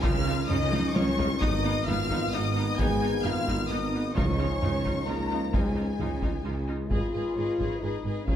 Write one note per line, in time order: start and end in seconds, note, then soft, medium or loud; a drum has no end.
0.00 0.44 C#2 medium
0.00 1.37 D#3 medium
0.00 1.42 C#4 medium
0.00 0.11 D#4 medium
0.00 0.48 F4 medium
0.00 0.11 F4 medium
0.00 0.49 F5 loud
0.00 0.50 F6 loud
0.00 taiko medium
0.04 0.45 C#3 loud
0.26 0.34 D#4 medium
0.26 0.34 F4 medium
0.49 0.90 C#2 medium
0.49 0.90 C#3 medium
0.49 0.57 D#4 medium
0.49 0.95 D#4 medium
0.49 0.57 F4 medium
0.49 0.95 D#5 loud
0.49 0.94 D#6 loud
0.49 taiko low-mid medium
0.72 0.80 D#4 medium
0.72 0.80 F4 medium
0.72 taiko high medium
0.94 1.36 C#2 loud
0.94 1.36 C#2 medium
0.94 1.36 C#3 medium
0.94 1.42 C#4 medium
0.94 1.02 D#4 medium
0.94 1.03 F4 medium
0.94 1.41 C#5 medium
0.94 1.41 C#6 loud
0.94 taiko high medium
1.18 1.26 D#4 medium
1.18 1.26 F4 medium
1.18 taiko low loud
1.40 1.81 G#1 medium
1.40 1.82 G#1 medium
1.40 1.82 G#2 medium
1.40 4.12 D#3 medium
1.40 1.49 B3 medium
1.40 4.12 B3 medium
1.40 1.49 D#4 medium
1.40 1.86 D#4 medium
1.40 1.86 D#5 loud
1.40 1.87 D#6 loud
1.40 taiko medium
1.64 1.72 B3 medium
1.64 1.72 D#4 medium
1.85 2.27 G#1 medium
1.85 2.28 G#2 medium
1.85 1.95 B3 medium
1.85 1.95 D#4 medium
1.85 2.32 F4 medium
1.85 2.32 F5 loud
1.85 2.32 F6 loud
1.85 taiko low-mid medium
2.10 2.18 B3 medium
2.10 2.18 D#4 medium
2.10 taiko medium
2.32 2.73 G#1 medium
2.32 2.67 G#1 medium
2.32 2.73 G#2 medium
2.32 2.41 B3 medium
2.32 2.41 D#4 medium
2.32 2.79 D#4 medium
2.32 2.79 D#5 medium
2.32 2.78 D#6 loud
2.56 2.64 B3 medium
2.56 2.64 D#4 medium
2.78 3.19 G#1 medium
2.78 3.20 G#1 medium
2.78 3.19 G#2 medium
2.78 2.87 B3 medium
2.78 2.87 D#4 medium
2.78 3.25 G#4 medium
2.78 3.24 G#5 loud
2.78 3.24 G#6 loud
2.78 taiko medium
3.02 3.10 B3 medium
3.02 3.10 D#4 medium
3.24 3.65 G#1 medium
3.24 3.65 G#2 medium
3.24 3.32 B3 medium
3.24 3.32 D#4 medium
3.24 3.71 F4 medium
3.24 3.70 F5 medium
3.24 3.70 F6 loud
3.24 taiko low-mid medium
3.47 3.55 B3 medium
3.47 3.56 D#4 medium
3.47 taiko medium
3.69 4.10 G#1 medium
3.69 4.11 G#1 medium
3.69 4.10 G#2 medium
3.69 3.78 B3 medium
3.69 4.01 D#4 medium
3.69 3.78 D#4 medium
3.69 4.16 D#5 medium
3.69 4.16 D#6 medium
3.94 4.02 B3 medium
3.94 4.02 D#4 medium
4.15 4.56 C#2 medium
4.15 4.57 C#2 medium
4.15 4.57 C#3 medium
4.15 6.68 F3 medium
4.15 5.05 C#4 medium
4.15 4.23 D#4 medium
4.15 6.68 D#4 medium
4.15 4.23 F4 medium
4.15 5.06 C#5 medium
4.15 5.05 C#6 medium
4.15 taiko medium
4.39 4.47 D#4 medium
4.39 4.47 F4 medium
4.61 5.02 C#2 medium
4.61 5.02 C#3 medium
4.61 4.70 D#4 soft
4.61 4.70 F4 medium
4.61 taiko low-mid medium
4.85 4.93 D#4 medium
4.85 4.93 F4 soft
4.85 taiko medium
5.05 5.47 C#2 medium
5.05 5.48 C#2 medium
5.05 5.48 C#3 medium
5.05 5.51 A#3 medium
5.05 5.15 D#4 soft
5.05 5.15 F4 soft
5.05 5.53 A#4 medium
5.05 5.53 A#5 medium
5.30 5.38 D#4 soft
5.30 5.38 F4 soft
5.52 5.93 C#2 medium
5.52 5.94 C#3 medium
5.52 6.43 G#3 medium
5.52 5.61 D#4 medium
5.52 5.60 F4 medium
5.52 6.65 G#4 medium
5.52 6.69 G#5 medium
5.52 taiko medium
5.76 5.84 D#4 soft
5.76 5.84 F4 soft
5.98 6.39 C#2 medium
5.98 6.40 C#3 medium
5.98 6.08 D#4 soft
5.98 6.07 F4 soft
5.98 taiko low-mid medium
6.22 6.30 D#4 soft
6.22 6.30 F4 soft
6.22 taiko medium
6.44 6.85 C#2 medium
6.44 6.86 C#3 medium
6.44 6.87 G#3 medium
6.44 6.53 D#4 soft
6.44 6.52 F4 soft
6.67 6.75 D#4 soft
6.67 6.75 F4 soft
6.89 6.99 G#1 medium
6.89 6.99 G#2 medium
6.89 7.81 F4 medium
6.89 7.11 G#4 medium
6.89 7.33 G#4 medium
6.89 7.11 B4 medium
6.89 7.11 D#5 soft
6.89 taiko medium
7.12 7.22 G#1 medium
7.12 7.22 G#2 medium
7.12 7.35 G#4 soft
7.12 7.35 B4 soft
7.12 7.35 D#5 soft
7.36 7.44 G#1 medium
7.36 7.45 G#2 soft
7.36 7.58 G#4 soft
7.36 7.57 B4 medium
7.36 7.82 C#5 medium
7.36 7.58 D#5 soft
7.58 7.67 G#1 medium
7.58 7.67 G#2 medium
7.58 7.81 G#4 soft
7.58 7.81 B4 soft
7.58 7.81 D#5 soft
7.58 taiko medium
7.80 7.89 G#1 medium
7.80 7.91 G#2 medium
7.80 8.27 D#4 medium
7.80 8.04 G#4 soft
7.80 8.28 B4 medium
7.80 8.03 B4 soft
7.80 8.04 D#5 soft
8.04 8.12 G#1 medium
8.04 8.13 G#2 soft
8.04 8.27 G#4 soft
8.04 8.27 B4 soft
8.04 8.27 D#5 soft
8.24 8.34 C#2 medium
8.24 8.36 C#3 medium
8.24 8.36 C#4 medium
8.24 8.36 G#4 medium
8.24 8.36 A#4 medium
8.24 8.36 C#5 soft
8.24 8.36 F5 soft
8.24 taiko medium